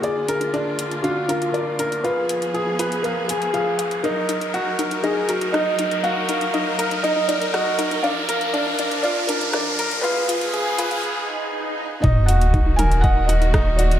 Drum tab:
HH |x-xxx-xxx-xxx-xx|x-xxx-xxx-xxx-xx|x-xxx-xxx-xxx-xx|x-xxx-xxx-xxx-xx|
SD |----------------|----------------|------------r---|------------r---|
T2 |----------------|----------------|----------------|----------------|
BD |----------------|----------------|----------------|----------------|

HH |x-xxx-xxx-xxx-xx|x-xxx-xx--------|x-xxx-xxx-xxx-xx|
SD |------------r---|----------------|------------r---|
T2 |----------------|----------------|------o---------|
BD |----------------|----------------|o---o---o---o---|